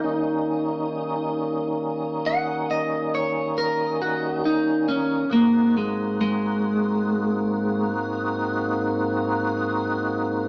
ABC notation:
X:1
M:12/8
L:1/8
Q:3/8=46
K:Ab
V:1 name="Clean electric guitar"
E4 z _g e d B _G E D | B, A, A,4 z6 |]
V:2 name="Tonewheel organ"
[E,G,B,DE]12 | [A,,B,CE_G]12 |]